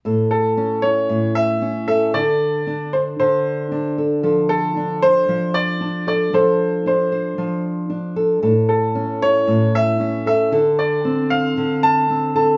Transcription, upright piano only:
\new Staff \with { instrumentName = "Upright piano" } { \time 4/4 \key d \minor \tempo 4 = 114 r8 a'4 cis''4 e''4 e''8 | d''4. c''8 c''4. r8 | r8 a'4 c''4 d''4 d''8 | c''4 c''4. r4. |
r8 a'4 cis''4 e''4 e''8 | r8 d''4 f''4 a''4 a''8 | }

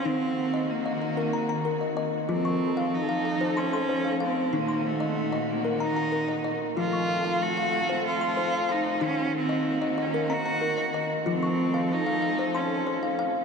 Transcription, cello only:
\new Staff \with { instrumentName = "Cello" } { \time 7/8 \tempo 4 = 94 c'4 bes2 r8 | c'4 ees'4 des'4 c'8 | bes8 a4 bes8 ees'4 r8 | f'4 ges'4 f'4 ees'8 |
des'8 c'4 des'8 ges'4 r8 | c'4 ees'4 des'4 r8 | }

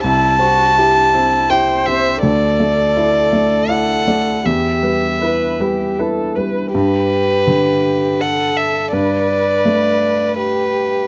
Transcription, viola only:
\new Staff \with { instrumentName = "Viola" } { \time 3/4 \key g \major \tempo 4 = 82 e'8 fis'8 g'8 e'8 c''4 | a'2. | g'4 b'8 g'8 a'8 b'8 | g'2 a'4 |
b'2 g'4 | }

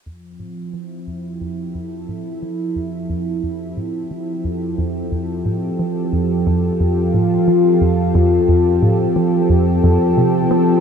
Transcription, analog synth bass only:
\new Staff \with { instrumentName = "Analog synth bass" } { \clef bass \time 4/4 \key f \major \tempo 4 = 89 f,8 a,8 f8 f,8 f,8 f,8 a,8 f8 | f,8 f,8 f,8 a,8 f8 f,8 f,8 f,8 | a,8 f8 f,8 f,8 f,8 a,8 f8 f,8 | f,8 f,8 a,8 f8 f,8 f,8 c8 c'8 | }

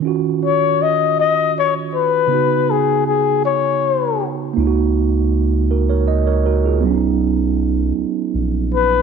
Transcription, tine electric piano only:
\new Staff \with { instrumentName = "Tine electric piano" } { \time 6/8 \key ees \minor \tempo 4. = 53 << { r2. | r2. | r4. <ges' bes'>16 <bes' des''>16 ees''16 <bes' des''>16 <ges' bes'>16 <f' aes'>16~ | <f' aes'>16 r2 r8. | } \\ { <ees des' f' ges'>2. | <des ces' ees' ges'>2. | <bes ees' f' ges'>2. | <fis b cis' d' dis'>2. | } >> }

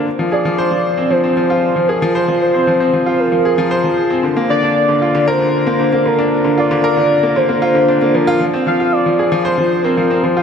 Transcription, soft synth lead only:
\new Staff \with { instrumentName = "Soft synth lead" } { \time 4/4 \key bes \mixolydian \tempo 4 = 115 r8 d''4. c''4. bes'8 | r8 c''4. bes'4. aes'8 | r8 d''4. c''4. bes'8 | r8 d''4. c''4. bes'8 |
r8 f''8 d''4 c''8. bes'8. c''8 | }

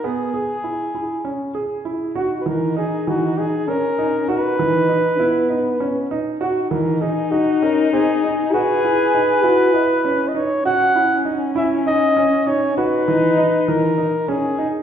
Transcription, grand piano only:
\new Staff \with { instrumentName = "Grand piano" } { \time 7/8 \key cis \dorian \tempo 4 = 99 b8 gis'8 e'8 e'8 cis'8 gis'8 e'8 | fis'8 e8 dis'8 e8 dis'8 cis'8 dis'8 | fis'8 e8 dis'8 e'8 dis'8 cis'8 dis'8 | fis'8 e8 dis'8 dis'8 cis'8 bis8 dis'8 |
fis'8 e'8 dis'8 e'8 dis''8 cis'8 dis'8 | fis'8 e'8 dis'8 e'8 dis'8 cis'8 dis'8 | fis'8 e8 dis'8 e8 dis'8 cis'8 dis'8 | }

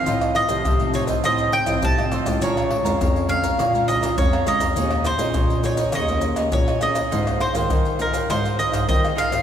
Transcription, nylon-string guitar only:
\new Staff \with { instrumentName = "Nylon-string guitar" } { \time 4/4 \key aes \major \tempo 4 = 102 << { <f c' ees'>8. <f c' ees'>8 <f c' ees'>8. <f c' ees'>8. <f c' ees'>8 <f c' ees'>8 <aes des' f'>16~ | <aes des' f'>8. <aes des' f'>8. <aes des' f'>8 r16 <aes des' f'>8. <aes des' f'>16 r16 <aes des' f'>16 r16 | <bes des' aes'>8 r16 <bes des' aes'>8. <bes des' aes'>8. <bes des' aes'>8. <bes des' aes'>16 r16 <bes des' aes'>16 r16 | <ees' f' c''>8. <ees' f' c''>8. <ees' f' c''>8 r16 <ees' f' c''>8. <ees' f' c''>16 r16 <ees' f' c''>8 | } \\ { a,4 a,4 a,4 a,4 | bes,4 f4 bes,4 f4 | ees4 bes,4 ees4 bes,4 | aes4 ees4 aes4 ees4 | } >> }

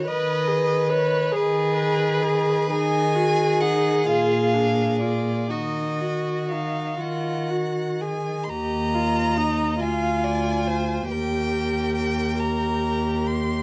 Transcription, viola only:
\new Staff \with { instrumentName = "Viola" } { \time 6/8 \key ees \minor \tempo 4. = 45 ces''8 aes'8 ces''8 aes'8 ces''8 aes'8 | ees'8 ges'8 ees'8 f'8 d'8 f'8 | ees'8 ges'8 ees'8 f'8 ges'8 aes'8 | \key ees \major g'8 f'8 ees'8 f'4. |
g'4. g'4. | }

